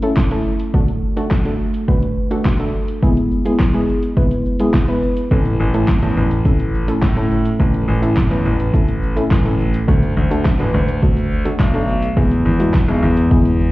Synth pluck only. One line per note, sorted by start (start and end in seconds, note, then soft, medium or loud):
0.03 0.18 A3 medium
0.03 0.18 C#4 medium
0.03 0.19 E4 medium
0.03 0.19 A4 medium
0.31 0.55 A3 medium
0.31 0.55 C#4 medium
0.31 0.55 E4 medium
0.31 0.55 A4 medium
0.74 0.98 A3 medium
0.74 0.98 D4 medium
0.74 0.98 F#4 medium
0.74 0.98 A4 medium
1.17 1.33 A3 medium
1.17 1.33 D4 medium
1.17 1.33 F#4 medium
1.17 1.33 A4 medium
1.45 1.69 A3 medium
1.45 1.69 D4 medium
1.45 1.69 F#4 medium
1.45 1.69 A4 medium
1.88 2.12 A3 medium
1.88 2.12 D4 medium
1.88 2.12 F#4 medium
1.88 2.12 B4 medium
2.31 2.47 A3 medium
2.31 2.47 D4 medium
2.31 2.47 F#4 medium
2.31 2.47 A4 loud
2.59 2.83 A3 medium
2.59 2.83 D4 medium
2.59 2.83 F#4 medium
2.59 2.83 A4 loud
3.02 3.26 G#3 medium
3.02 3.26 B3 medium
3.02 3.26 E4 medium
3.02 3.27 G#4 medium
3.45 3.61 G#3 medium
3.45 3.61 B3 medium
3.45 3.61 E4 medium
3.45 3.61 G#4 medium
3.74 3.98 G#3 medium
3.74 3.98 B3 medium
3.74 3.98 E4 medium
3.74 3.98 G#4 medium
4.17 4.40 G#3 medium
4.17 4.41 B3 medium
4.17 4.41 E4 medium
4.17 4.41 B4 medium
4.60 4.75 G#3 medium
4.60 4.76 B3 medium
4.60 4.76 E4 medium
4.60 4.76 G#4 loud
4.88 5.12 G#3 medium
4.88 5.12 B3 medium
4.88 5.12 E4 medium
4.88 5.12 B4 loud
5.31 5.55 A3 medium
5.31 5.55 C#4 medium
5.31 5.55 E4 medium
5.31 5.55 A4 medium
5.74 5.90 A3 medium
5.74 5.90 C#4 medium
5.74 5.90 E4 medium
5.74 5.90 A4 medium
6.02 6.26 A3 medium
6.02 6.26 C#4 medium
6.02 6.26 E4 medium
6.02 6.26 A4 medium
6.45 6.69 A3 medium
6.45 6.69 C#4 medium
6.45 6.69 E4 medium
6.45 6.69 A4 medium
6.88 7.04 A3 medium
6.88 7.04 C#4 medium
6.88 7.04 E4 medium
6.88 7.04 A4 loud
7.17 7.40 A3 medium
7.17 7.41 C#4 medium
7.17 7.41 E4 medium
7.17 7.41 A4 medium
7.59 7.83 A3 medium
7.59 7.83 C#4 medium
7.59 7.83 E4 medium
7.59 7.84 A4 medium
8.02 8.18 A3 medium
8.02 8.18 C#4 medium
8.02 8.18 E4 medium
8.02 8.18 A4 medium
8.30 8.54 A3 medium
8.30 8.55 C#4 medium
8.30 8.55 E4 medium
8.30 8.55 B4 medium
8.73 8.97 A3 medium
8.73 8.98 C#4 medium
8.73 8.98 E4 medium
8.73 8.98 A4 medium
9.16 9.32 A3 medium
9.16 9.32 C#4 medium
9.16 9.32 E4 medium
9.16 9.33 A4 loud
9.45 9.69 A3 medium
9.45 9.69 C#4 medium
9.45 9.69 E4 medium
9.45 9.69 A4 loud
9.88 10.12 A3 medium
9.88 10.12 D4 medium
9.88 10.12 F#4 medium
9.88 10.12 A4 medium
10.31 10.47 A3 medium
10.31 10.47 D4 medium
10.31 10.47 F#4 medium
10.31 10.47 A4 loud
10.59 10.83 A3 medium
10.59 10.83 D4 medium
10.59 10.83 F#4 medium
10.59 10.83 B4 medium
11.02 11.26 A3 medium
11.02 11.26 D4 medium
11.02 11.26 F#4 medium
11.02 11.26 A4 medium
11.45 11.61 A3 medium
11.45 11.61 D4 medium
11.45 11.61 F#4 medium
11.45 11.61 A4 medium
11.74 11.98 A3 medium
11.74 11.98 D4 medium
11.74 11.98 F#4 medium
11.74 11.98 A4 loud
12.16 12.40 G#3 medium
12.16 12.40 B3 medium
12.16 12.40 E4 medium
12.16 12.41 G#4 loud
12.59 12.75 G#3 medium
12.59 12.75 B3 medium
12.59 12.75 E4 medium
12.59 12.76 F#4 medium
12.88 13.12 G#3 medium
12.88 13.12 B3 medium
12.88 13.12 E4 medium
12.88 13.12 G#4 medium
13.31 13.55 G#3 medium
13.31 13.55 B3 medium
13.31 13.55 E4 medium
13.31 13.55 G#4 medium